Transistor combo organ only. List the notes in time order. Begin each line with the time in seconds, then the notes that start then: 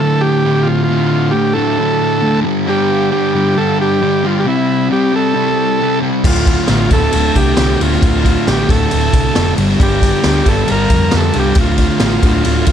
0.00 A4
0.21 G4
0.63 F4
0.84 F4
1.31 G4
1.53 A4
2.69 G4
3.12 G4
3.58 A4
3.81 G4
4.26 F4
4.39 G4
4.48 E4
4.92 G4
5.16 A4
6.27 F4
6.70 F4
6.93 A4
7.36 G4
7.81 F4
8.03 F4
8.49 G4
8.70 A4
9.83 G4
10.28 G4
10.49 A4
10.71 A#4
11.17 A4
11.39 G4
11.61 F4